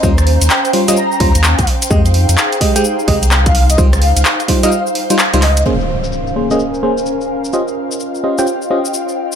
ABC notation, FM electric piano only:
X:1
M:4/4
L:1/16
Q:"Swing 16ths" 1/4=128
K:Bbdor
V:1 name="FM electric piano"
[G,DFc] z4 z [G,DFc] [G,DFe] z2 [G,DFc] z4 z | [A,Ge] z4 z [A,Ge] [A,Gg] z2 [A,Ge] z4 z | [G,EFc] z4 z [G,EFc] [G,EFe] z3 [G,EFc] z [G,EFc] z2 | [B,DAc] z4 z [B,DAc] [B,DAe] z2 [B,DAc] z4 z |
[DFGce] z4 z [DFGce] [DFGcg] z2 [DFGce] z4 z |]